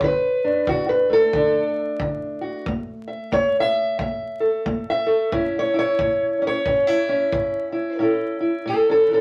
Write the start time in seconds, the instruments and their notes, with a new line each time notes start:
0.01 steel-string acoustic guitar D3 B4, kick
0.44 steel-string acoustic guitar D4
0.67 steel-string acoustic guitar D3 F#4, kick
0.89 steel-string acoustic guitar B4
1.10 steel-string acoustic guitar A3 A4
1.33 steel-string acoustic guitar D3 D4, kick
2.00 steel-string acoustic guitar D3, kick
2.41 steel-string acoustic guitar F#4
2.66 steel-string acoustic guitar A3, kick
3.08 steel-string acoustic guitar E5
3.32 steel-string acoustic guitar A3 C#5, kick
3.60 steel-string acoustic guitar E5
3.99 steel-string acoustic guitar A3 E5, kick
4.40 steel-string acoustic guitar A4
4.66 steel-string acoustic guitar A3, kick
4.90 steel-string acoustic guitar E5
5.07 steel-string acoustic guitar A4
5.32 steel-string acoustic guitar A2 C#4 E4, kick
5.59 steel-string acoustic guitar C#5
5.74 steel-string acoustic guitar E4
5.79 steel-string acoustic guitar C#5
5.99 steel-string acoustic guitar A2, kick
6.42 steel-string acoustic guitar C#4
6.47 steel-string acoustic guitar C#5
6.66 steel-string acoustic guitar A2 C#4, kick
6.87 steel-string acoustic guitar E4
7.09 steel-string acoustic guitar C#4
7.32 steel-string acoustic guitar A2, kick
7.72 steel-string acoustic guitar E4
7.99 steel-string acoustic guitar A2 C#4 E4 A4
8.40 steel-string acoustic guitar E4
8.66 steel-string acoustic guitar A2 C#4 A4
8.89 steel-string acoustic guitar C#4 A4
9.07 steel-string acoustic guitar E3
9.13 steel-string acoustic guitar C#4 A4